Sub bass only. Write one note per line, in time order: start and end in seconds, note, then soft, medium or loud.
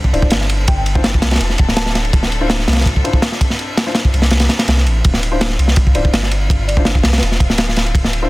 0.00 0.12 C2 loud
0.13 0.30 D1 loud
0.32 1.21 G1 medium
1.22 1.39 C2 loud
1.40 1.57 E1 medium
1.59 2.67 D1 medium
2.68 3.03 C2 loud
4.13 4.48 C2 loud
4.68 4.87 C2 loud
4.86 5.02 A1 medium
5.05 5.58 D1 loud
5.59 5.94 C2 medium
5.95 6.12 D1 loud
6.13 7.03 G1 medium
7.04 7.21 C2 loud
7.22 7.39 E1 medium
7.40 8.29 D1 medium